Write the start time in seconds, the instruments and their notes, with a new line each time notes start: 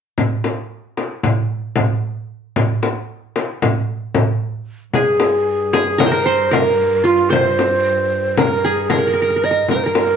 0.18 frame drum, darbuka dum
0.44 darbuka tek, frame drum
0.72 darbuka ka
0.84 darbuka ka
0.97 darbuka tek, frame drum
1.23 frame drum, darbuka dum
1.51 darbuka ka
1.76 frame drum, darbuka dum
2.56 darbuka dum, frame drum
2.82 darbuka tek, frame drum
3.09 darbuka ka
3.22 darbuka ka
3.36 darbuka tek, frame drum
3.62 frame drum, darbuka dum
3.89 darbuka ka
4.14 frame drum, darbuka dum
4.93 double bass G2, qanun G#4, ney G#4, frame drum
5.20 frame drum
5.73 qanun G#4, frame drum
5.98 qanun A#4, ney A#4, frame drum
6.06 qanun C5
6.11 qanun A#4
6.24 ney C5, qanun C5
6.51 qanun A#4, ney A#4, frame drum
7.04 qanun F4, ney F4
7.30 qanun C5, ney C5, frame drum
7.59 frame drum
8.37 ney A#4, qanun A#4, frame drum
8.64 qanun G#4, ney G#4
8.90 qanun A#4, ney A#4, frame drum
8.98 qanun A#4
9.07 qanun A#4
9.13 qanun A#4
9.22 qanun A#4
9.30 qanun A#4
9.36 qanun A#4
9.44 qanun A#4, ney D#5
9.51 qanun A#4
9.68 double bass G2, ney A#4, qanun A#4, frame drum
9.76 ney C5
9.84 ney A#4, qanun A#4
9.95 frame drum